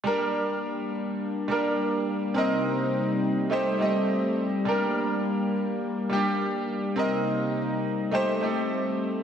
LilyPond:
<<
  \new Staff \with { instrumentName = "Grand piano" } { \time 4/4 \key g \minor \tempo 4 = 104 <g d' bes'>4. r4 <g d' bes'>4 r8 | <c' bes' ees''>4. r8 <a ees' g' c''>8 <a ees' g' ees''>4 r8 | <g d' bes'>4. r4 <g d' g'>4 r8 | <c' bes' ees''>4. r8 <a ees' g' c''>8 <a ees' g' a'>4 r8 | }
  \new Staff \with { instrumentName = "Analog synth pad" } { \time 4/4 \key g \minor << { <bes d'>1 | <c c' ees'>2 <a c'>2 | bes1 | <c ees'>2 <a c'>2 | } \\ { g1~ | g1~ | g1 | bes2 r2 | } >> }
>>